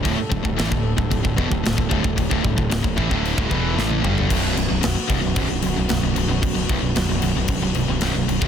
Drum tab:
CC |x---x---x---x---|x---x---x-------|x-x-x-x-x-x-x-x-|x-x-x-x-x-x-x-x-|
SD |----o-------o---|----o-------o---|----o-------o---|----o-------o---|
T1 |----------------|-------------o--|----------------|----------------|
T2 |----------------|--------------o-|----------------|----------------|
FT |----------------|---------------o|----------------|----------------|
BD |o-oo-o-ooooo-ooo|oooo-ooo-oo-----|o-----o-o-------|o-o-----o------o|